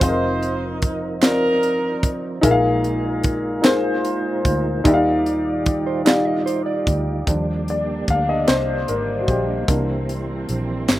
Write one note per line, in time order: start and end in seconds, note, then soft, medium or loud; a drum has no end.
0.00 2.03 F1 loud
0.00 2.40 F3 medium
0.00 0.88 C4 medium
0.00 2.39 C4 medium
0.00 2.40 D#4 medium
0.00 1.19 D#4 medium
0.00 0.88 F4 medium
0.00 0.09 G#4 medium
0.00 2.40 A#4 medium
0.00 0.78 C5 medium
0.00 0.90 D#5 medium
0.00 kick loud
0.00 closed hi-hat medium
0.09 0.92 A#4 medium
0.43 closed hi-hat soft
0.82 kick medium
0.82 closed hi-hat medium
1.21 2.09 C4 medium
1.21 2.40 D#4 medium
1.21 2.09 F4 medium
1.21 2.09 A#4 loud
1.21 2.10 A#4 medium
1.21 2.10 D5 medium
1.21 snare loud
1.21 clap medium
1.21 closed hi-hat medium
1.63 closed hi-hat medium
2.03 2.40 G#1 medium
2.03 kick medium
2.03 closed hi-hat medium
2.41 4.41 A#1 loud
2.41 3.60 A#2 medium
2.41 4.81 G#3 medium
2.41 3.30 D#4 medium
2.41 4.81 D#4 medium
2.41 4.81 F4 medium
2.41 3.30 G#4 medium
2.41 3.31 A#4 medium
2.41 4.81 A#4 medium
2.41 2.50 E5 medium
2.41 kick medium
2.41 closed hi-hat medium
2.51 3.34 F5 loud
2.84 closed hi-hat soft
3.23 kick medium
3.23 closed hi-hat medium
3.62 4.50 D#4 medium
3.62 4.51 G#4 medium
3.62 4.52 A#4 medium
3.62 4.52 C5 medium
3.62 snare loud
3.62 clap medium
3.62 closed hi-hat medium
4.05 closed hi-hat medium
4.45 4.82 D2 medium
4.45 kick medium
4.45 closed hi-hat medium
4.84 6.82 D#2 loud
4.84 6.02 D#3 medium
4.84 7.23 G3 medium
4.84 5.72 D#4 medium
4.84 7.23 D#4 medium
4.84 7.22 F4 medium
4.84 5.72 G4 medium
4.84 4.91 C5 medium
4.84 5.73 D5 medium
4.84 4.93 E5 medium
4.84 kick loud
4.84 closed hi-hat medium
4.92 7.25 D5 medium
4.92 5.76 F5 medium
5.26 closed hi-hat soft
5.66 kick medium
5.66 closed hi-hat medium
5.87 6.05 C5 medium
6.05 6.93 D#4 medium
6.05 6.93 G4 medium
6.05 6.25 D5 medium
6.05 6.94 D5 medium
6.05 6.94 F5 medium
6.05 snare loud
6.05 clap medium
6.05 closed hi-hat medium
6.25 6.45 D#5 medium
6.46 6.65 C5 medium
6.46 closed hi-hat medium
6.66 7.23 D5 medium
6.87 7.24 D2 medium
6.87 kick medium
6.87 closed hi-hat medium
7.26 8.03 D#2 medium
7.26 9.66 D3 medium
7.26 7.81 F3 soft
7.26 10.99 G3 medium
7.26 7.81 G3 soft
7.26 9.64 A#3 medium
7.26 10.99 A#3 medium
7.26 9.64 D4 medium
7.26 9.66 D4 medium
7.26 7.81 D4 soft
7.26 9.64 G4 medium
7.26 9.64 D5 medium
7.26 kick medium
7.26 closed hi-hat medium
7.68 8.10 D5 medium
7.68 closed hi-hat soft
8.08 8.45 D2 medium
8.08 8.27 F5 medium
8.08 kick medium
8.08 closed hi-hat soft
8.29 8.42 D#5 medium
8.41 8.48 D5 medium
8.48 8.85 C2 medium
8.48 8.85 C5 medium
8.48 snare medium
8.48 clap medium
8.48 closed hi-hat medium
8.88 9.25 G#1 medium
8.88 9.22 A#4 medium
8.88 closed hi-hat medium
9.21 9.28 F#4 medium
9.28 9.65 A#1 medium
9.28 9.66 G4 medium
9.28 kick medium
9.28 closed hi-hat soft
9.68 10.45 C2 medium
9.68 10.84 E3 soft
9.68 10.99 E3 medium
9.68 10.85 A#3 soft
9.68 10.99 A#3 medium
9.68 10.99 C4 medium
9.68 10.85 D4 medium
9.68 10.99 E4 soft
9.68 10.99 G4 soft
9.68 10.05 A#4 medium
9.68 10.99 C5 medium
9.68 kick medium
9.68 closed hi-hat medium
10.09 closed hi-hat soft
10.49 10.86 A#1 medium
10.49 closed hi-hat soft
10.88 10.99 G1 medium
10.88 snare medium
10.88 clap medium
10.88 closed hi-hat medium